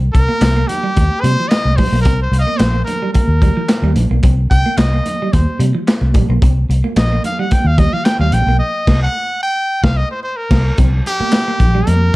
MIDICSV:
0, 0, Header, 1, 7, 480
1, 0, Start_track
1, 0, Key_signature, -3, "minor"
1, 0, Tempo, 545455
1, 1808, Time_signature, 4, 2, 24, 8
1, 10700, End_track
2, 0, Start_track
2, 0, Title_t, "Trumpet"
2, 0, Program_c, 0, 56
2, 115, Note_on_c, 0, 70, 110
2, 594, Note_on_c, 0, 67, 105
2, 608, Note_off_c, 0, 70, 0
2, 1064, Note_on_c, 0, 72, 110
2, 1078, Note_off_c, 0, 67, 0
2, 1306, Note_on_c, 0, 75, 103
2, 1320, Note_off_c, 0, 72, 0
2, 1552, Note_on_c, 0, 72, 93
2, 1566, Note_off_c, 0, 75, 0
2, 1768, Note_off_c, 0, 72, 0
2, 1773, Note_on_c, 0, 70, 99
2, 1938, Note_off_c, 0, 70, 0
2, 1955, Note_on_c, 0, 72, 88
2, 2075, Note_off_c, 0, 72, 0
2, 2095, Note_on_c, 0, 77, 80
2, 2109, Note_on_c, 0, 75, 105
2, 2122, Note_off_c, 0, 77, 0
2, 2267, Note_on_c, 0, 72, 93
2, 2280, Note_off_c, 0, 75, 0
2, 2499, Note_off_c, 0, 72, 0
2, 2504, Note_on_c, 0, 70, 91
2, 2739, Note_off_c, 0, 70, 0
2, 2750, Note_on_c, 0, 70, 78
2, 3445, Note_off_c, 0, 70, 0
2, 3966, Note_on_c, 0, 79, 118
2, 4203, Note_on_c, 0, 75, 95
2, 4216, Note_off_c, 0, 79, 0
2, 4688, Note_on_c, 0, 72, 75
2, 4701, Note_off_c, 0, 75, 0
2, 4929, Note_off_c, 0, 72, 0
2, 6141, Note_on_c, 0, 75, 95
2, 6359, Note_off_c, 0, 75, 0
2, 6384, Note_on_c, 0, 77, 99
2, 6510, Note_on_c, 0, 78, 91
2, 6524, Note_off_c, 0, 77, 0
2, 6623, Note_on_c, 0, 79, 92
2, 6637, Note_off_c, 0, 78, 0
2, 6749, Note_on_c, 0, 77, 100
2, 6762, Note_off_c, 0, 79, 0
2, 6854, Note_on_c, 0, 75, 104
2, 6867, Note_off_c, 0, 77, 0
2, 6982, Note_on_c, 0, 77, 103
2, 6995, Note_off_c, 0, 75, 0
2, 7081, Note_on_c, 0, 79, 107
2, 7094, Note_off_c, 0, 77, 0
2, 7210, Note_off_c, 0, 79, 0
2, 7216, Note_on_c, 0, 77, 105
2, 7333, Note_on_c, 0, 79, 107
2, 7347, Note_off_c, 0, 77, 0
2, 7557, Note_off_c, 0, 79, 0
2, 7562, Note_on_c, 0, 75, 98
2, 7907, Note_off_c, 0, 75, 0
2, 7943, Note_on_c, 0, 78, 108
2, 8268, Note_off_c, 0, 78, 0
2, 8296, Note_on_c, 0, 79, 107
2, 8654, Note_on_c, 0, 77, 97
2, 8667, Note_off_c, 0, 79, 0
2, 8775, Note_on_c, 0, 75, 99
2, 8788, Note_off_c, 0, 77, 0
2, 8890, Note_off_c, 0, 75, 0
2, 8896, Note_on_c, 0, 72, 86
2, 8998, Note_off_c, 0, 72, 0
2, 9003, Note_on_c, 0, 72, 86
2, 9120, Note_on_c, 0, 70, 88
2, 9133, Note_off_c, 0, 72, 0
2, 9481, Note_off_c, 0, 70, 0
2, 9742, Note_on_c, 0, 67, 115
2, 10450, Note_on_c, 0, 70, 100
2, 10463, Note_off_c, 0, 67, 0
2, 10700, Note_off_c, 0, 70, 0
2, 10700, End_track
3, 0, Start_track
3, 0, Title_t, "Clean electric guitar"
3, 0, Program_c, 1, 27
3, 251, Note_on_c, 1, 58, 78
3, 318, Note_off_c, 1, 58, 0
3, 498, Note_on_c, 1, 58, 85
3, 563, Note_off_c, 1, 58, 0
3, 735, Note_on_c, 1, 55, 76
3, 801, Note_off_c, 1, 55, 0
3, 1095, Note_on_c, 1, 55, 73
3, 1167, Note_off_c, 1, 55, 0
3, 1230, Note_on_c, 1, 53, 71
3, 1292, Note_off_c, 1, 53, 0
3, 1571, Note_on_c, 1, 55, 66
3, 1644, Note_off_c, 1, 55, 0
3, 1700, Note_on_c, 1, 58, 71
3, 1764, Note_off_c, 1, 58, 0
3, 1812, Note_on_c, 1, 60, 92
3, 1885, Note_off_c, 1, 60, 0
3, 2173, Note_on_c, 1, 58, 74
3, 2240, Note_off_c, 1, 58, 0
3, 2409, Note_on_c, 1, 58, 78
3, 2477, Note_off_c, 1, 58, 0
3, 2661, Note_on_c, 1, 55, 77
3, 2725, Note_off_c, 1, 55, 0
3, 3014, Note_on_c, 1, 55, 81
3, 3087, Note_off_c, 1, 55, 0
3, 3140, Note_on_c, 1, 53, 83
3, 3205, Note_off_c, 1, 53, 0
3, 3377, Note_on_c, 1, 55, 75
3, 3443, Note_off_c, 1, 55, 0
3, 3617, Note_on_c, 1, 58, 73
3, 3683, Note_off_c, 1, 58, 0
3, 3738, Note_on_c, 1, 60, 81
3, 3809, Note_off_c, 1, 60, 0
3, 4100, Note_on_c, 1, 58, 81
3, 4165, Note_off_c, 1, 58, 0
3, 4345, Note_on_c, 1, 58, 71
3, 4409, Note_off_c, 1, 58, 0
3, 4596, Note_on_c, 1, 55, 77
3, 4656, Note_off_c, 1, 55, 0
3, 4925, Note_on_c, 1, 55, 76
3, 5001, Note_off_c, 1, 55, 0
3, 5056, Note_on_c, 1, 53, 72
3, 5122, Note_off_c, 1, 53, 0
3, 5418, Note_on_c, 1, 55, 75
3, 5490, Note_off_c, 1, 55, 0
3, 5544, Note_on_c, 1, 58, 71
3, 5608, Note_off_c, 1, 58, 0
3, 5661, Note_on_c, 1, 60, 97
3, 5732, Note_off_c, 1, 60, 0
3, 6020, Note_on_c, 1, 58, 77
3, 6085, Note_off_c, 1, 58, 0
3, 6270, Note_on_c, 1, 58, 73
3, 6332, Note_off_c, 1, 58, 0
3, 6505, Note_on_c, 1, 55, 76
3, 6569, Note_off_c, 1, 55, 0
3, 6851, Note_on_c, 1, 55, 77
3, 6925, Note_off_c, 1, 55, 0
3, 6981, Note_on_c, 1, 53, 83
3, 7046, Note_off_c, 1, 53, 0
3, 7222, Note_on_c, 1, 55, 64
3, 7287, Note_off_c, 1, 55, 0
3, 7467, Note_on_c, 1, 58, 75
3, 7530, Note_off_c, 1, 58, 0
3, 9490, Note_on_c, 1, 60, 93
3, 9564, Note_off_c, 1, 60, 0
3, 9861, Note_on_c, 1, 58, 76
3, 9925, Note_off_c, 1, 58, 0
3, 10101, Note_on_c, 1, 58, 72
3, 10165, Note_off_c, 1, 58, 0
3, 10337, Note_on_c, 1, 55, 75
3, 10402, Note_off_c, 1, 55, 0
3, 10700, End_track
4, 0, Start_track
4, 0, Title_t, "Fingered electric bass"
4, 0, Program_c, 2, 33
4, 130, Note_on_c, 2, 36, 83
4, 229, Note_off_c, 2, 36, 0
4, 362, Note_on_c, 2, 36, 88
4, 553, Note_off_c, 2, 36, 0
4, 854, Note_on_c, 2, 39, 81
4, 951, Note_off_c, 2, 39, 0
4, 1087, Note_on_c, 2, 48, 103
4, 1187, Note_off_c, 2, 48, 0
4, 1453, Note_on_c, 2, 36, 80
4, 1569, Note_off_c, 2, 36, 0
4, 1569, Note_on_c, 2, 34, 85
4, 1669, Note_off_c, 2, 34, 0
4, 1693, Note_on_c, 2, 35, 90
4, 1811, Note_off_c, 2, 35, 0
4, 1811, Note_on_c, 2, 36, 91
4, 1999, Note_off_c, 2, 36, 0
4, 2038, Note_on_c, 2, 36, 100
4, 2142, Note_off_c, 2, 36, 0
4, 2285, Note_on_c, 2, 34, 96
4, 2476, Note_off_c, 2, 34, 0
4, 2883, Note_on_c, 2, 39, 81
4, 3077, Note_off_c, 2, 39, 0
4, 3365, Note_on_c, 2, 39, 92
4, 3458, Note_off_c, 2, 39, 0
4, 3480, Note_on_c, 2, 34, 91
4, 3584, Note_off_c, 2, 34, 0
4, 3613, Note_on_c, 2, 35, 86
4, 3703, Note_off_c, 2, 35, 0
4, 3728, Note_on_c, 2, 36, 101
4, 3918, Note_off_c, 2, 36, 0
4, 3970, Note_on_c, 2, 36, 94
4, 4070, Note_off_c, 2, 36, 0
4, 4202, Note_on_c, 2, 36, 92
4, 4394, Note_off_c, 2, 36, 0
4, 4695, Note_on_c, 2, 39, 86
4, 4793, Note_off_c, 2, 39, 0
4, 4921, Note_on_c, 2, 48, 91
4, 5025, Note_off_c, 2, 48, 0
4, 5292, Note_on_c, 2, 36, 90
4, 5411, Note_off_c, 2, 36, 0
4, 5411, Note_on_c, 2, 34, 92
4, 5511, Note_off_c, 2, 34, 0
4, 5537, Note_on_c, 2, 35, 94
4, 5626, Note_off_c, 2, 35, 0
4, 5652, Note_on_c, 2, 36, 86
4, 5840, Note_off_c, 2, 36, 0
4, 5889, Note_on_c, 2, 36, 93
4, 5989, Note_off_c, 2, 36, 0
4, 6127, Note_on_c, 2, 34, 91
4, 6317, Note_off_c, 2, 34, 0
4, 6728, Note_on_c, 2, 39, 91
4, 6920, Note_off_c, 2, 39, 0
4, 7211, Note_on_c, 2, 39, 90
4, 7302, Note_off_c, 2, 39, 0
4, 7323, Note_on_c, 2, 34, 101
4, 7426, Note_off_c, 2, 34, 0
4, 7449, Note_on_c, 2, 35, 86
4, 7566, Note_off_c, 2, 35, 0
4, 7810, Note_on_c, 2, 36, 101
4, 7975, Note_off_c, 2, 36, 0
4, 8654, Note_on_c, 2, 36, 101
4, 8816, Note_off_c, 2, 36, 0
4, 9246, Note_on_c, 2, 36, 113
4, 9413, Note_off_c, 2, 36, 0
4, 9491, Note_on_c, 2, 36, 102
4, 9679, Note_off_c, 2, 36, 0
4, 10208, Note_on_c, 2, 34, 95
4, 10396, Note_off_c, 2, 34, 0
4, 10450, Note_on_c, 2, 41, 101
4, 10638, Note_off_c, 2, 41, 0
4, 10700, End_track
5, 0, Start_track
5, 0, Title_t, "Muted clean electric guitar strokes"
5, 122, Note_on_c, 9, 29, 45
5, 210, Note_off_c, 9, 29, 0
5, 612, Note_on_c, 9, 29, 43
5, 700, Note_off_c, 9, 29, 0
5, 850, Note_on_c, 9, 29, 39
5, 938, Note_off_c, 9, 29, 0
5, 1332, Note_on_c, 9, 29, 41
5, 1420, Note_off_c, 9, 29, 0
5, 2053, Note_on_c, 9, 29, 47
5, 2141, Note_off_c, 9, 29, 0
5, 2532, Note_on_c, 9, 29, 41
5, 2620, Note_off_c, 9, 29, 0
5, 2772, Note_on_c, 9, 29, 40
5, 2860, Note_off_c, 9, 29, 0
5, 3494, Note_on_c, 9, 29, 44
5, 3582, Note_off_c, 9, 29, 0
5, 3984, Note_on_c, 9, 29, 47
5, 4072, Note_off_c, 9, 29, 0
5, 4463, Note_on_c, 9, 29, 51
5, 4551, Note_off_c, 9, 29, 0
5, 4702, Note_on_c, 9, 29, 40
5, 4790, Note_off_c, 9, 29, 0
5, 5179, Note_on_c, 9, 29, 47
5, 5267, Note_off_c, 9, 29, 0
5, 5895, Note_on_c, 9, 29, 46
5, 5983, Note_off_c, 9, 29, 0
5, 6380, Note_on_c, 9, 29, 50
5, 6468, Note_off_c, 9, 29, 0
5, 6621, Note_on_c, 9, 29, 42
5, 6709, Note_off_c, 9, 29, 0
5, 7335, Note_on_c, 9, 29, 45
5, 7423, Note_off_c, 9, 29, 0
5, 9738, Note_on_c, 9, 29, 44
5, 9826, Note_off_c, 9, 29, 0
5, 10216, Note_on_c, 9, 29, 50
5, 10304, Note_off_c, 9, 29, 0
5, 10451, Note_on_c, 9, 29, 41
5, 10539, Note_off_c, 9, 29, 0
5, 10700, End_track
6, 0, Start_track
6, 0, Title_t, "Muted fingered electric bass strokes"
6, 2775, Note_on_c, 9, 29, 48
6, 2863, Note_off_c, 9, 29, 0
6, 6616, Note_on_c, 9, 29, 47
6, 6704, Note_off_c, 9, 29, 0
6, 9856, Note_on_c, 9, 29, 42
6, 9944, Note_off_c, 9, 29, 0
6, 10700, End_track
7, 0, Start_track
7, 0, Title_t, "Drums"
7, 129, Note_on_c, 9, 36, 106
7, 130, Note_on_c, 9, 42, 64
7, 217, Note_off_c, 9, 36, 0
7, 218, Note_off_c, 9, 42, 0
7, 260, Note_on_c, 9, 63, 80
7, 348, Note_off_c, 9, 63, 0
7, 361, Note_on_c, 9, 42, 105
7, 363, Note_on_c, 9, 62, 37
7, 370, Note_on_c, 9, 38, 124
7, 370, Note_on_c, 9, 39, 96
7, 449, Note_off_c, 9, 42, 0
7, 451, Note_off_c, 9, 62, 0
7, 458, Note_off_c, 9, 38, 0
7, 458, Note_off_c, 9, 39, 0
7, 609, Note_on_c, 9, 42, 63
7, 615, Note_on_c, 9, 62, 32
7, 615, Note_on_c, 9, 63, 53
7, 615, Note_on_c, 9, 64, 74
7, 697, Note_off_c, 9, 42, 0
7, 703, Note_off_c, 9, 62, 0
7, 703, Note_off_c, 9, 63, 0
7, 703, Note_off_c, 9, 64, 0
7, 848, Note_on_c, 9, 62, 35
7, 848, Note_on_c, 9, 63, 82
7, 849, Note_on_c, 9, 42, 75
7, 855, Note_on_c, 9, 36, 86
7, 936, Note_off_c, 9, 62, 0
7, 936, Note_off_c, 9, 63, 0
7, 937, Note_off_c, 9, 42, 0
7, 943, Note_off_c, 9, 36, 0
7, 1088, Note_on_c, 9, 62, 35
7, 1088, Note_on_c, 9, 63, 79
7, 1092, Note_on_c, 9, 42, 76
7, 1176, Note_off_c, 9, 62, 0
7, 1176, Note_off_c, 9, 63, 0
7, 1180, Note_off_c, 9, 42, 0
7, 1329, Note_on_c, 9, 42, 85
7, 1333, Note_on_c, 9, 38, 100
7, 1333, Note_on_c, 9, 39, 91
7, 1417, Note_off_c, 9, 42, 0
7, 1421, Note_off_c, 9, 38, 0
7, 1421, Note_off_c, 9, 39, 0
7, 1465, Note_on_c, 9, 63, 83
7, 1553, Note_off_c, 9, 63, 0
7, 1565, Note_on_c, 9, 46, 90
7, 1568, Note_on_c, 9, 63, 86
7, 1568, Note_on_c, 9, 64, 89
7, 1570, Note_on_c, 9, 36, 93
7, 1653, Note_off_c, 9, 46, 0
7, 1656, Note_off_c, 9, 63, 0
7, 1656, Note_off_c, 9, 64, 0
7, 1658, Note_off_c, 9, 36, 0
7, 1805, Note_on_c, 9, 42, 98
7, 1809, Note_on_c, 9, 36, 115
7, 1812, Note_on_c, 9, 62, 32
7, 1893, Note_off_c, 9, 42, 0
7, 1897, Note_off_c, 9, 36, 0
7, 1900, Note_off_c, 9, 62, 0
7, 2054, Note_on_c, 9, 42, 65
7, 2058, Note_on_c, 9, 62, 36
7, 2142, Note_off_c, 9, 42, 0
7, 2146, Note_off_c, 9, 62, 0
7, 2174, Note_on_c, 9, 63, 84
7, 2262, Note_off_c, 9, 63, 0
7, 2281, Note_on_c, 9, 42, 90
7, 2290, Note_on_c, 9, 62, 39
7, 2291, Note_on_c, 9, 38, 117
7, 2291, Note_on_c, 9, 39, 98
7, 2369, Note_off_c, 9, 42, 0
7, 2378, Note_off_c, 9, 62, 0
7, 2379, Note_off_c, 9, 38, 0
7, 2379, Note_off_c, 9, 39, 0
7, 2528, Note_on_c, 9, 42, 71
7, 2533, Note_on_c, 9, 63, 59
7, 2533, Note_on_c, 9, 64, 74
7, 2616, Note_off_c, 9, 42, 0
7, 2621, Note_off_c, 9, 63, 0
7, 2621, Note_off_c, 9, 64, 0
7, 2765, Note_on_c, 9, 62, 34
7, 2765, Note_on_c, 9, 63, 90
7, 2768, Note_on_c, 9, 42, 85
7, 2774, Note_on_c, 9, 36, 84
7, 2853, Note_off_c, 9, 62, 0
7, 2853, Note_off_c, 9, 63, 0
7, 2856, Note_off_c, 9, 42, 0
7, 2862, Note_off_c, 9, 36, 0
7, 3006, Note_on_c, 9, 62, 37
7, 3006, Note_on_c, 9, 63, 79
7, 3007, Note_on_c, 9, 36, 95
7, 3010, Note_on_c, 9, 42, 73
7, 3094, Note_off_c, 9, 62, 0
7, 3094, Note_off_c, 9, 63, 0
7, 3095, Note_off_c, 9, 36, 0
7, 3098, Note_off_c, 9, 42, 0
7, 3244, Note_on_c, 9, 42, 91
7, 3249, Note_on_c, 9, 38, 115
7, 3249, Note_on_c, 9, 39, 100
7, 3252, Note_on_c, 9, 62, 31
7, 3332, Note_off_c, 9, 42, 0
7, 3337, Note_off_c, 9, 38, 0
7, 3337, Note_off_c, 9, 39, 0
7, 3340, Note_off_c, 9, 62, 0
7, 3377, Note_on_c, 9, 63, 94
7, 3465, Note_off_c, 9, 63, 0
7, 3483, Note_on_c, 9, 42, 80
7, 3487, Note_on_c, 9, 63, 84
7, 3487, Note_on_c, 9, 64, 93
7, 3571, Note_off_c, 9, 42, 0
7, 3575, Note_off_c, 9, 63, 0
7, 3575, Note_off_c, 9, 64, 0
7, 3721, Note_on_c, 9, 42, 85
7, 3727, Note_on_c, 9, 36, 120
7, 3809, Note_off_c, 9, 42, 0
7, 3815, Note_off_c, 9, 36, 0
7, 3968, Note_on_c, 9, 36, 99
7, 3972, Note_on_c, 9, 42, 67
7, 3982, Note_on_c, 9, 62, 34
7, 4056, Note_off_c, 9, 36, 0
7, 4060, Note_off_c, 9, 42, 0
7, 4070, Note_off_c, 9, 62, 0
7, 4098, Note_on_c, 9, 63, 75
7, 4186, Note_off_c, 9, 63, 0
7, 4201, Note_on_c, 9, 42, 89
7, 4211, Note_on_c, 9, 38, 111
7, 4211, Note_on_c, 9, 39, 100
7, 4289, Note_off_c, 9, 42, 0
7, 4299, Note_off_c, 9, 38, 0
7, 4299, Note_off_c, 9, 39, 0
7, 4450, Note_on_c, 9, 42, 60
7, 4453, Note_on_c, 9, 62, 36
7, 4453, Note_on_c, 9, 63, 59
7, 4453, Note_on_c, 9, 64, 78
7, 4538, Note_off_c, 9, 42, 0
7, 4541, Note_off_c, 9, 62, 0
7, 4541, Note_off_c, 9, 63, 0
7, 4541, Note_off_c, 9, 64, 0
7, 4691, Note_on_c, 9, 62, 36
7, 4691, Note_on_c, 9, 63, 84
7, 4692, Note_on_c, 9, 42, 86
7, 4695, Note_on_c, 9, 36, 88
7, 4779, Note_off_c, 9, 62, 0
7, 4779, Note_off_c, 9, 63, 0
7, 4780, Note_off_c, 9, 42, 0
7, 4783, Note_off_c, 9, 36, 0
7, 4929, Note_on_c, 9, 42, 71
7, 4930, Note_on_c, 9, 63, 74
7, 5017, Note_off_c, 9, 42, 0
7, 5018, Note_off_c, 9, 63, 0
7, 5169, Note_on_c, 9, 62, 28
7, 5171, Note_on_c, 9, 42, 90
7, 5176, Note_on_c, 9, 38, 112
7, 5176, Note_on_c, 9, 39, 95
7, 5257, Note_off_c, 9, 62, 0
7, 5259, Note_off_c, 9, 42, 0
7, 5264, Note_off_c, 9, 38, 0
7, 5264, Note_off_c, 9, 39, 0
7, 5295, Note_on_c, 9, 63, 93
7, 5383, Note_off_c, 9, 63, 0
7, 5403, Note_on_c, 9, 62, 40
7, 5403, Note_on_c, 9, 63, 86
7, 5403, Note_on_c, 9, 64, 95
7, 5406, Note_on_c, 9, 42, 91
7, 5410, Note_on_c, 9, 36, 94
7, 5491, Note_off_c, 9, 62, 0
7, 5491, Note_off_c, 9, 63, 0
7, 5491, Note_off_c, 9, 64, 0
7, 5494, Note_off_c, 9, 42, 0
7, 5498, Note_off_c, 9, 36, 0
7, 5650, Note_on_c, 9, 36, 121
7, 5654, Note_on_c, 9, 42, 91
7, 5738, Note_off_c, 9, 36, 0
7, 5742, Note_off_c, 9, 42, 0
7, 5893, Note_on_c, 9, 62, 34
7, 5902, Note_on_c, 9, 42, 66
7, 5981, Note_off_c, 9, 62, 0
7, 5990, Note_off_c, 9, 42, 0
7, 6019, Note_on_c, 9, 63, 81
7, 6107, Note_off_c, 9, 63, 0
7, 6127, Note_on_c, 9, 42, 96
7, 6132, Note_on_c, 9, 62, 39
7, 6136, Note_on_c, 9, 38, 118
7, 6136, Note_on_c, 9, 39, 99
7, 6215, Note_off_c, 9, 42, 0
7, 6220, Note_off_c, 9, 62, 0
7, 6224, Note_off_c, 9, 38, 0
7, 6224, Note_off_c, 9, 39, 0
7, 6373, Note_on_c, 9, 42, 67
7, 6374, Note_on_c, 9, 62, 37
7, 6374, Note_on_c, 9, 63, 57
7, 6374, Note_on_c, 9, 64, 80
7, 6461, Note_off_c, 9, 42, 0
7, 6462, Note_off_c, 9, 62, 0
7, 6462, Note_off_c, 9, 63, 0
7, 6462, Note_off_c, 9, 64, 0
7, 6609, Note_on_c, 9, 42, 90
7, 6613, Note_on_c, 9, 62, 35
7, 6613, Note_on_c, 9, 63, 87
7, 6616, Note_on_c, 9, 36, 83
7, 6697, Note_off_c, 9, 42, 0
7, 6701, Note_off_c, 9, 62, 0
7, 6701, Note_off_c, 9, 63, 0
7, 6704, Note_off_c, 9, 36, 0
7, 6847, Note_on_c, 9, 42, 81
7, 6848, Note_on_c, 9, 36, 100
7, 6849, Note_on_c, 9, 62, 36
7, 6849, Note_on_c, 9, 63, 79
7, 6935, Note_off_c, 9, 42, 0
7, 6936, Note_off_c, 9, 36, 0
7, 6937, Note_off_c, 9, 62, 0
7, 6937, Note_off_c, 9, 63, 0
7, 7088, Note_on_c, 9, 42, 84
7, 7093, Note_on_c, 9, 38, 116
7, 7093, Note_on_c, 9, 39, 97
7, 7176, Note_off_c, 9, 42, 0
7, 7181, Note_off_c, 9, 38, 0
7, 7181, Note_off_c, 9, 39, 0
7, 7219, Note_on_c, 9, 63, 87
7, 7307, Note_off_c, 9, 63, 0
7, 7323, Note_on_c, 9, 42, 85
7, 7333, Note_on_c, 9, 62, 45
7, 7333, Note_on_c, 9, 63, 88
7, 7333, Note_on_c, 9, 64, 84
7, 7411, Note_off_c, 9, 42, 0
7, 7421, Note_off_c, 9, 62, 0
7, 7421, Note_off_c, 9, 63, 0
7, 7421, Note_off_c, 9, 64, 0
7, 7809, Note_on_c, 9, 36, 114
7, 7809, Note_on_c, 9, 49, 89
7, 7814, Note_on_c, 9, 38, 116
7, 7897, Note_off_c, 9, 36, 0
7, 7897, Note_off_c, 9, 49, 0
7, 7902, Note_off_c, 9, 38, 0
7, 8656, Note_on_c, 9, 36, 104
7, 8661, Note_on_c, 9, 38, 103
7, 8744, Note_off_c, 9, 36, 0
7, 8749, Note_off_c, 9, 38, 0
7, 9247, Note_on_c, 9, 36, 127
7, 9247, Note_on_c, 9, 49, 89
7, 9252, Note_on_c, 9, 38, 112
7, 9335, Note_off_c, 9, 36, 0
7, 9335, Note_off_c, 9, 49, 0
7, 9340, Note_off_c, 9, 38, 0
7, 9485, Note_on_c, 9, 42, 92
7, 9489, Note_on_c, 9, 36, 122
7, 9491, Note_on_c, 9, 64, 66
7, 9573, Note_off_c, 9, 42, 0
7, 9577, Note_off_c, 9, 36, 0
7, 9579, Note_off_c, 9, 64, 0
7, 9735, Note_on_c, 9, 42, 63
7, 9823, Note_off_c, 9, 42, 0
7, 9855, Note_on_c, 9, 63, 77
7, 9943, Note_off_c, 9, 63, 0
7, 9958, Note_on_c, 9, 42, 90
7, 9966, Note_on_c, 9, 62, 36
7, 9968, Note_on_c, 9, 38, 127
7, 9968, Note_on_c, 9, 39, 112
7, 10046, Note_off_c, 9, 42, 0
7, 10054, Note_off_c, 9, 62, 0
7, 10056, Note_off_c, 9, 38, 0
7, 10056, Note_off_c, 9, 39, 0
7, 10208, Note_on_c, 9, 36, 89
7, 10208, Note_on_c, 9, 42, 64
7, 10211, Note_on_c, 9, 64, 84
7, 10296, Note_off_c, 9, 36, 0
7, 10296, Note_off_c, 9, 42, 0
7, 10299, Note_off_c, 9, 64, 0
7, 10446, Note_on_c, 9, 42, 79
7, 10447, Note_on_c, 9, 63, 85
7, 10534, Note_off_c, 9, 42, 0
7, 10535, Note_off_c, 9, 63, 0
7, 10700, End_track
0, 0, End_of_file